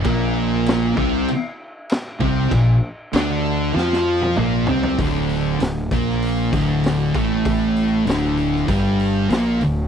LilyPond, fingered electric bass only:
\new Staff \with { instrumentName = "Fingered electric bass" } { \clef bass \time 4/4 \key d \minor \tempo 4 = 97 bes,,4. c,8 r4. c,8 | bes,,8 r8 d,4 f,4 bes,,8 c,8 | d,,4 d,,8 bes,,4 d,,4 a,,8~ | a,,4 d,,4 g,,4 bes,,8 d,,8 | }